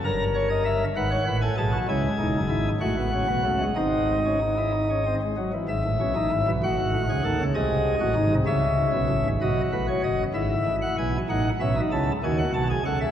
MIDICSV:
0, 0, Header, 1, 2, 480
1, 0, Start_track
1, 0, Key_signature, 4, "minor"
1, 0, Tempo, 616016
1, 38, Time_signature, 6, 3, 24, 8
1, 2438, Tempo, 640342
1, 4358, Tempo, 622407
1, 10081, End_track
2, 0, Start_track
2, 0, Title_t, "Pipe organ"
2, 0, Program_c, 0, 19
2, 38, Note_on_c, 0, 70, 73
2, 38, Note_on_c, 0, 82, 78
2, 39, Note_on_c, 0, 31, 68
2, 39, Note_on_c, 0, 43, 73
2, 187, Note_off_c, 0, 82, 0
2, 274, Note_on_c, 0, 73, 68
2, 378, Note_off_c, 0, 73, 0
2, 390, Note_on_c, 0, 75, 80
2, 496, Note_off_c, 0, 75, 0
2, 509, Note_on_c, 0, 76, 80
2, 655, Note_off_c, 0, 31, 0
2, 655, Note_off_c, 0, 43, 0
2, 655, Note_off_c, 0, 70, 0
2, 659, Note_off_c, 0, 76, 0
2, 751, Note_on_c, 0, 44, 75
2, 752, Note_on_c, 0, 78, 82
2, 753, Note_on_c, 0, 71, 72
2, 754, Note_on_c, 0, 32, 68
2, 856, Note_off_c, 0, 71, 0
2, 867, Note_on_c, 0, 73, 67
2, 901, Note_off_c, 0, 44, 0
2, 902, Note_off_c, 0, 32, 0
2, 973, Note_off_c, 0, 73, 0
2, 991, Note_on_c, 0, 33, 64
2, 992, Note_on_c, 0, 45, 65
2, 992, Note_on_c, 0, 71, 70
2, 1061, Note_off_c, 0, 78, 0
2, 1096, Note_off_c, 0, 71, 0
2, 1105, Note_on_c, 0, 80, 73
2, 1107, Note_on_c, 0, 69, 60
2, 1140, Note_off_c, 0, 33, 0
2, 1140, Note_off_c, 0, 45, 0
2, 1211, Note_off_c, 0, 80, 0
2, 1213, Note_off_c, 0, 69, 0
2, 1229, Note_on_c, 0, 47, 74
2, 1230, Note_on_c, 0, 81, 82
2, 1231, Note_on_c, 0, 68, 67
2, 1232, Note_on_c, 0, 35, 71
2, 1335, Note_off_c, 0, 68, 0
2, 1343, Note_on_c, 0, 66, 61
2, 1379, Note_off_c, 0, 47, 0
2, 1380, Note_off_c, 0, 81, 0
2, 1381, Note_off_c, 0, 35, 0
2, 1451, Note_off_c, 0, 66, 0
2, 1466, Note_on_c, 0, 56, 68
2, 1467, Note_on_c, 0, 37, 74
2, 1469, Note_on_c, 0, 49, 79
2, 1470, Note_on_c, 0, 64, 66
2, 1470, Note_on_c, 0, 80, 72
2, 1618, Note_off_c, 0, 37, 0
2, 1619, Note_off_c, 0, 49, 0
2, 1620, Note_off_c, 0, 64, 0
2, 1705, Note_on_c, 0, 28, 65
2, 1705, Note_on_c, 0, 63, 60
2, 1706, Note_on_c, 0, 40, 67
2, 1811, Note_off_c, 0, 28, 0
2, 1812, Note_off_c, 0, 40, 0
2, 1826, Note_on_c, 0, 30, 72
2, 1830, Note_on_c, 0, 42, 73
2, 1856, Note_off_c, 0, 63, 0
2, 1932, Note_off_c, 0, 30, 0
2, 1934, Note_off_c, 0, 42, 0
2, 1939, Note_on_c, 0, 64, 64
2, 1941, Note_on_c, 0, 32, 72
2, 1941, Note_on_c, 0, 44, 70
2, 2088, Note_off_c, 0, 56, 0
2, 2091, Note_off_c, 0, 80, 0
2, 2092, Note_off_c, 0, 64, 0
2, 2093, Note_off_c, 0, 44, 0
2, 2094, Note_off_c, 0, 32, 0
2, 2185, Note_on_c, 0, 33, 76
2, 2187, Note_on_c, 0, 57, 62
2, 2187, Note_on_c, 0, 66, 69
2, 2187, Note_on_c, 0, 78, 69
2, 2188, Note_on_c, 0, 45, 80
2, 2294, Note_off_c, 0, 57, 0
2, 2312, Note_on_c, 0, 59, 60
2, 2419, Note_off_c, 0, 59, 0
2, 2437, Note_on_c, 0, 61, 64
2, 2502, Note_off_c, 0, 33, 0
2, 2504, Note_off_c, 0, 45, 0
2, 2539, Note_off_c, 0, 61, 0
2, 2552, Note_on_c, 0, 59, 61
2, 2555, Note_on_c, 0, 35, 69
2, 2555, Note_on_c, 0, 47, 69
2, 2656, Note_off_c, 0, 59, 0
2, 2658, Note_off_c, 0, 35, 0
2, 2658, Note_off_c, 0, 47, 0
2, 2674, Note_on_c, 0, 57, 65
2, 2675, Note_on_c, 0, 49, 75
2, 2676, Note_on_c, 0, 37, 72
2, 2777, Note_off_c, 0, 57, 0
2, 2797, Note_on_c, 0, 56, 58
2, 2812, Note_off_c, 0, 66, 0
2, 2812, Note_off_c, 0, 78, 0
2, 2824, Note_off_c, 0, 37, 0
2, 2824, Note_off_c, 0, 49, 0
2, 2899, Note_off_c, 0, 56, 0
2, 2910, Note_on_c, 0, 44, 62
2, 2910, Note_on_c, 0, 75, 60
2, 2911, Note_on_c, 0, 32, 64
2, 2911, Note_on_c, 0, 60, 65
2, 2911, Note_on_c, 0, 63, 62
2, 3224, Note_off_c, 0, 60, 0
2, 3278, Note_on_c, 0, 61, 62
2, 3382, Note_off_c, 0, 61, 0
2, 3382, Note_off_c, 0, 63, 0
2, 3397, Note_on_c, 0, 63, 59
2, 3502, Note_off_c, 0, 63, 0
2, 3520, Note_on_c, 0, 64, 58
2, 3623, Note_off_c, 0, 64, 0
2, 3641, Note_on_c, 0, 63, 65
2, 3744, Note_off_c, 0, 63, 0
2, 3761, Note_on_c, 0, 61, 55
2, 3864, Note_off_c, 0, 61, 0
2, 3887, Note_on_c, 0, 60, 64
2, 3948, Note_off_c, 0, 44, 0
2, 3948, Note_off_c, 0, 75, 0
2, 3949, Note_off_c, 0, 32, 0
2, 3987, Note_off_c, 0, 60, 0
2, 4007, Note_on_c, 0, 56, 61
2, 4107, Note_off_c, 0, 56, 0
2, 4118, Note_on_c, 0, 54, 61
2, 4221, Note_off_c, 0, 54, 0
2, 4241, Note_on_c, 0, 52, 58
2, 4342, Note_off_c, 0, 52, 0
2, 4353, Note_on_c, 0, 76, 70
2, 4354, Note_on_c, 0, 44, 70
2, 4356, Note_on_c, 0, 32, 69
2, 4460, Note_off_c, 0, 44, 0
2, 4461, Note_off_c, 0, 32, 0
2, 4480, Note_on_c, 0, 33, 58
2, 4482, Note_on_c, 0, 45, 60
2, 4584, Note_off_c, 0, 33, 0
2, 4584, Note_off_c, 0, 45, 0
2, 4596, Note_on_c, 0, 47, 61
2, 4597, Note_on_c, 0, 35, 57
2, 4597, Note_on_c, 0, 61, 71
2, 4701, Note_off_c, 0, 47, 0
2, 4702, Note_off_c, 0, 35, 0
2, 4702, Note_off_c, 0, 61, 0
2, 4716, Note_on_c, 0, 33, 65
2, 4718, Note_on_c, 0, 45, 65
2, 4719, Note_on_c, 0, 63, 83
2, 4821, Note_off_c, 0, 33, 0
2, 4822, Note_off_c, 0, 45, 0
2, 4823, Note_off_c, 0, 63, 0
2, 4842, Note_on_c, 0, 32, 65
2, 4842, Note_on_c, 0, 44, 66
2, 4843, Note_on_c, 0, 64, 78
2, 4944, Note_off_c, 0, 32, 0
2, 4944, Note_off_c, 0, 44, 0
2, 4965, Note_on_c, 0, 47, 62
2, 4967, Note_on_c, 0, 35, 67
2, 4976, Note_off_c, 0, 76, 0
2, 4991, Note_off_c, 0, 64, 0
2, 5066, Note_off_c, 0, 35, 0
2, 5066, Note_off_c, 0, 47, 0
2, 5086, Note_on_c, 0, 66, 88
2, 5086, Note_on_c, 0, 78, 70
2, 5087, Note_on_c, 0, 33, 68
2, 5088, Note_on_c, 0, 45, 65
2, 5186, Note_off_c, 0, 33, 0
2, 5187, Note_off_c, 0, 45, 0
2, 5203, Note_on_c, 0, 44, 61
2, 5206, Note_on_c, 0, 32, 60
2, 5303, Note_off_c, 0, 44, 0
2, 5305, Note_off_c, 0, 32, 0
2, 5318, Note_on_c, 0, 45, 67
2, 5319, Note_on_c, 0, 33, 65
2, 5390, Note_off_c, 0, 66, 0
2, 5419, Note_off_c, 0, 45, 0
2, 5420, Note_off_c, 0, 33, 0
2, 5439, Note_on_c, 0, 37, 67
2, 5440, Note_on_c, 0, 49, 70
2, 5441, Note_on_c, 0, 68, 73
2, 5539, Note_off_c, 0, 37, 0
2, 5540, Note_off_c, 0, 49, 0
2, 5540, Note_off_c, 0, 68, 0
2, 5554, Note_on_c, 0, 69, 92
2, 5556, Note_on_c, 0, 39, 77
2, 5557, Note_on_c, 0, 51, 74
2, 5657, Note_off_c, 0, 39, 0
2, 5657, Note_off_c, 0, 51, 0
2, 5674, Note_on_c, 0, 37, 65
2, 5677, Note_on_c, 0, 49, 65
2, 5694, Note_off_c, 0, 78, 0
2, 5700, Note_off_c, 0, 69, 0
2, 5775, Note_off_c, 0, 37, 0
2, 5776, Note_off_c, 0, 49, 0
2, 5789, Note_on_c, 0, 68, 94
2, 5789, Note_on_c, 0, 75, 77
2, 5790, Note_on_c, 0, 36, 69
2, 5791, Note_on_c, 0, 48, 79
2, 6095, Note_off_c, 0, 68, 0
2, 6096, Note_off_c, 0, 36, 0
2, 6096, Note_off_c, 0, 48, 0
2, 6143, Note_on_c, 0, 66, 85
2, 6144, Note_on_c, 0, 45, 78
2, 6146, Note_on_c, 0, 33, 73
2, 6247, Note_off_c, 0, 45, 0
2, 6247, Note_off_c, 0, 66, 0
2, 6248, Note_off_c, 0, 33, 0
2, 6259, Note_on_c, 0, 44, 73
2, 6259, Note_on_c, 0, 63, 83
2, 6260, Note_on_c, 0, 32, 71
2, 6364, Note_off_c, 0, 44, 0
2, 6365, Note_off_c, 0, 32, 0
2, 6381, Note_on_c, 0, 48, 76
2, 6383, Note_on_c, 0, 36, 72
2, 6403, Note_off_c, 0, 75, 0
2, 6409, Note_off_c, 0, 63, 0
2, 6485, Note_off_c, 0, 48, 0
2, 6486, Note_off_c, 0, 36, 0
2, 6496, Note_on_c, 0, 37, 76
2, 6498, Note_on_c, 0, 49, 79
2, 6498, Note_on_c, 0, 61, 94
2, 6498, Note_on_c, 0, 76, 84
2, 6811, Note_off_c, 0, 37, 0
2, 6812, Note_off_c, 0, 49, 0
2, 6861, Note_on_c, 0, 35, 71
2, 6862, Note_on_c, 0, 47, 74
2, 6967, Note_off_c, 0, 35, 0
2, 6968, Note_off_c, 0, 47, 0
2, 6984, Note_on_c, 0, 45, 80
2, 6985, Note_on_c, 0, 33, 74
2, 7089, Note_off_c, 0, 45, 0
2, 7090, Note_off_c, 0, 33, 0
2, 7109, Note_on_c, 0, 32, 67
2, 7109, Note_on_c, 0, 44, 72
2, 7124, Note_off_c, 0, 61, 0
2, 7124, Note_off_c, 0, 76, 0
2, 7213, Note_off_c, 0, 32, 0
2, 7213, Note_off_c, 0, 44, 0
2, 7231, Note_on_c, 0, 66, 59
2, 7231, Note_on_c, 0, 75, 71
2, 7232, Note_on_c, 0, 47, 62
2, 7234, Note_on_c, 0, 35, 62
2, 7381, Note_off_c, 0, 47, 0
2, 7381, Note_off_c, 0, 75, 0
2, 7383, Note_off_c, 0, 35, 0
2, 7470, Note_on_c, 0, 71, 66
2, 7471, Note_on_c, 0, 33, 58
2, 7471, Note_on_c, 0, 45, 55
2, 7575, Note_off_c, 0, 71, 0
2, 7588, Note_on_c, 0, 73, 65
2, 7622, Note_off_c, 0, 33, 0
2, 7622, Note_off_c, 0, 45, 0
2, 7695, Note_off_c, 0, 73, 0
2, 7709, Note_on_c, 0, 42, 58
2, 7710, Note_on_c, 0, 75, 65
2, 7711, Note_on_c, 0, 30, 64
2, 7857, Note_off_c, 0, 66, 0
2, 7862, Note_off_c, 0, 42, 0
2, 7862, Note_off_c, 0, 75, 0
2, 7863, Note_off_c, 0, 30, 0
2, 7944, Note_on_c, 0, 32, 63
2, 7944, Note_on_c, 0, 44, 64
2, 7946, Note_on_c, 0, 64, 65
2, 7947, Note_on_c, 0, 76, 76
2, 8098, Note_off_c, 0, 32, 0
2, 8099, Note_off_c, 0, 44, 0
2, 8193, Note_on_c, 0, 45, 65
2, 8194, Note_on_c, 0, 33, 63
2, 8264, Note_off_c, 0, 76, 0
2, 8312, Note_on_c, 0, 78, 70
2, 8346, Note_off_c, 0, 33, 0
2, 8346, Note_off_c, 0, 45, 0
2, 8420, Note_off_c, 0, 78, 0
2, 8437, Note_on_c, 0, 35, 70
2, 8437, Note_on_c, 0, 80, 82
2, 8440, Note_on_c, 0, 47, 69
2, 8576, Note_off_c, 0, 64, 0
2, 8589, Note_off_c, 0, 35, 0
2, 8589, Note_off_c, 0, 80, 0
2, 8591, Note_off_c, 0, 47, 0
2, 8677, Note_on_c, 0, 33, 72
2, 8678, Note_on_c, 0, 78, 72
2, 8680, Note_on_c, 0, 63, 78
2, 8681, Note_on_c, 0, 45, 73
2, 8829, Note_off_c, 0, 33, 0
2, 8829, Note_off_c, 0, 78, 0
2, 8831, Note_off_c, 0, 45, 0
2, 8831, Note_off_c, 0, 63, 0
2, 8917, Note_on_c, 0, 35, 64
2, 8917, Note_on_c, 0, 76, 64
2, 8918, Note_on_c, 0, 47, 64
2, 8918, Note_on_c, 0, 61, 71
2, 9025, Note_off_c, 0, 61, 0
2, 9036, Note_on_c, 0, 63, 78
2, 9069, Note_off_c, 0, 35, 0
2, 9069, Note_off_c, 0, 76, 0
2, 9070, Note_off_c, 0, 47, 0
2, 9144, Note_off_c, 0, 63, 0
2, 9159, Note_on_c, 0, 49, 74
2, 9159, Note_on_c, 0, 64, 85
2, 9159, Note_on_c, 0, 81, 74
2, 9161, Note_on_c, 0, 37, 72
2, 9310, Note_off_c, 0, 81, 0
2, 9311, Note_off_c, 0, 37, 0
2, 9311, Note_off_c, 0, 49, 0
2, 9311, Note_off_c, 0, 64, 0
2, 9404, Note_on_c, 0, 51, 73
2, 9405, Note_on_c, 0, 80, 79
2, 9406, Note_on_c, 0, 39, 76
2, 9406, Note_on_c, 0, 66, 84
2, 9509, Note_off_c, 0, 80, 0
2, 9520, Note_on_c, 0, 78, 68
2, 9552, Note_off_c, 0, 51, 0
2, 9553, Note_off_c, 0, 39, 0
2, 9624, Note_off_c, 0, 78, 0
2, 9637, Note_on_c, 0, 35, 69
2, 9639, Note_on_c, 0, 81, 75
2, 9640, Note_on_c, 0, 47, 69
2, 9712, Note_off_c, 0, 66, 0
2, 9743, Note_off_c, 0, 81, 0
2, 9761, Note_on_c, 0, 68, 74
2, 9764, Note_on_c, 0, 80, 69
2, 9786, Note_off_c, 0, 35, 0
2, 9788, Note_off_c, 0, 47, 0
2, 9863, Note_off_c, 0, 68, 0
2, 9865, Note_off_c, 0, 80, 0
2, 9881, Note_on_c, 0, 37, 74
2, 9881, Note_on_c, 0, 49, 73
2, 9881, Note_on_c, 0, 78, 78
2, 9883, Note_on_c, 0, 69, 84
2, 9983, Note_off_c, 0, 78, 0
2, 10002, Note_on_c, 0, 76, 68
2, 10027, Note_off_c, 0, 49, 0
2, 10028, Note_off_c, 0, 37, 0
2, 10029, Note_off_c, 0, 69, 0
2, 10081, Note_off_c, 0, 76, 0
2, 10081, End_track
0, 0, End_of_file